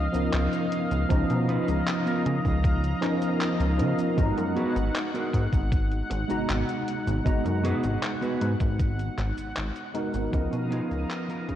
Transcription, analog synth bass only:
0.14 0.29 C#2 soft
0.33 0.47 C#2 loud
0.91 1.05 C#2 medium
1.10 1.24 C#2 loud
1.30 1.58 B2 medium
1.68 1.82 C#2 loud
2.26 2.40 C#3 medium
2.45 2.94 C#2 medium
3.60 3.81 C#2 loud
3.80 3.94 C#3 loud
4.18 4.32 G#1 medium
4.38 4.65 F#2 medium
4.76 4.90 G#1 loud
5.33 5.47 G#2 medium
5.53 6.02 G#1 medium
6.11 6.24 G#1 loud
6.30 6.45 G#1 soft
6.49 6.63 G#1 loud
7.06 7.20 G#1 medium
7.26 7.40 G#1 loud
7.45 7.73 F#2 medium
7.84 7.97 G#1 loud
8.41 8.55 G#2 medium
8.61 9.10 G#1 medium
9.18 9.32 G#1 loud
9.38 9.53 G#1 soft
9.57 9.71 G#1 loud
10.14 10.28 G#1 medium
10.33 10.47 C#2 loud
10.53 10.81 B2 medium
10.91 11.05 C#2 loud
11.49 11.55 C#3 medium

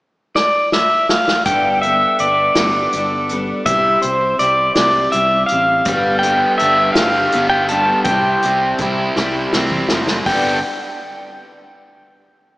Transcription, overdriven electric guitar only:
5.88 6.97 G3 medium
6.23 7.33 B3 medium
6.60 8.07 D4 medium
6.97 7.71 G3 medium
7.34 8.07 B3 medium
7.71 9.17 G3 medium
8.09 9.92 C3 medium
8.45 9.54 C4 medium
8.81 10.28 E4 medium
9.18 9.91 G3 medium
9.55 10.28 C4 medium
9.92 10.28 G3 medium
10.28 10.57 G2 medium
10.28 10.58 D3 medium
10.28 10.58 G3 medium
10.28 10.58 B3 medium
10.28 10.58 D4 medium
10.28 10.58 G4 medium

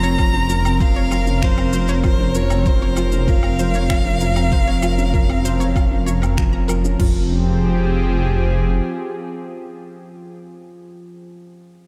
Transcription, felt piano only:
0.00 0.19 F3 medium
0.00 0.03 C4 loud
0.00 0.18 C4 medium
0.00 0.34 C#4 medium
0.19 0.28 F3 medium
0.34 0.49 C#4 medium
0.49 0.64 F3 medium
0.64 0.79 C4 loud
0.80 0.95 F3 medium
0.96 1.11 C4 medium
1.11 1.20 F3 medium
1.27 1.42 C#4 medium
1.42 1.57 F3 medium
1.57 1.72 C4 loud
1.73 1.88 F3 medium
1.89 2.04 C4 medium
2.05 2.13 F3 medium
2.20 2.35 C#4 medium
2.36 2.50 F3 medium
2.51 2.65 C4 loud
2.66 2.81 F3 medium
2.82 2.97 C4 medium
2.97 3.06 F3 medium
3.13 3.27 C#4 medium
3.28 3.43 F3 medium
3.44 3.58 C4 loud
3.59 3.74 F3 medium
3.74 3.89 C4 medium
3.90 3.99 F3 medium
4.06 4.20 C#4 medium
4.22 4.36 F3 medium
4.37 4.51 C4 loud
4.67 4.82 C4 medium
4.83 4.92 F3 medium
4.98 5.13 C#4 medium
5.14 5.28 F3 medium
5.29 5.44 C4 loud
5.44 5.59 F3 medium
5.60 5.75 C4 medium
5.75 5.84 F3 medium
5.91 6.06 C#4 medium
6.07 6.21 F3 medium
6.22 6.37 C4 loud
6.37 6.52 F3 medium
6.53 6.68 C4 medium
6.69 6.77 F3 medium
6.85 6.99 C#4 medium
6.99 7.28 F3 medium

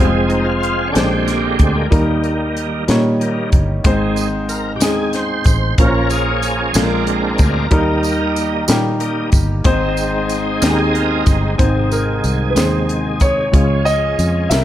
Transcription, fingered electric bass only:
0.00 0.91 F1 medium
0.96 1.56 A#1 medium
1.59 1.89 D2 medium
1.92 2.85 D#2 medium
2.89 3.54 A#2 medium
3.53 3.83 G1 medium
3.85 4.81 G#1 medium
4.81 5.42 D#2 medium
5.46 5.76 A1 medium
5.78 6.71 A#1 loud
6.75 7.36 A#1 medium
7.39 7.69 D2 medium
7.72 8.65 D#2 loud
8.69 9.29 A#2 medium
9.33 9.63 G1 medium
9.65 10.58 G#1 medium
10.62 11.23 D#2 medium
11.27 11.57 G1 loud
11.59 12.20 G#1 medium
12.24 12.54 C2 medium
12.56 13.49 D#2 medium
13.53 14.14 C#2 medium
14.19 14.48 F2 medium
14.50 14.64 C2 medium

